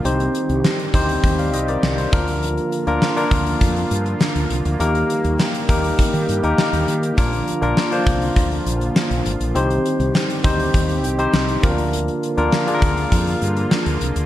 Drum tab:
HH |xxxx-xxxxxxx-xxx|xxxx-xxxxxxx-xxx|xxxx-xxxxxxx-xxx|xxxx-xxxxxxx-xxx|
SD |----o-------o---|----o-------o---|----o-------o---|----o-------o---|
BD |------o-o-----o-|------o-o-------|------o-o-------|o-----o-o-------|

HH |xxxx-xxxxxxx-xxx|xxxx-xxxxxxx-xxx|
SD |----o-------o---|----o-------o---|
BD |------o-o-----o-|------o-o-------|